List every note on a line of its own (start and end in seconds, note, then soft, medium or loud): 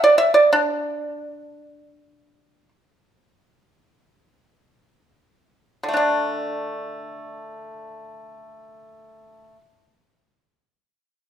0.04 0.16 D5 medium
0.18 0.32 E5 medium
0.34 0.50 D5 medium
0.53 2.69 D4 medium
5.83 9.51 D3 soft
5.88 9.56 A3 soft
5.94 5.97 D4 soft
5.94 9.61 D4 soft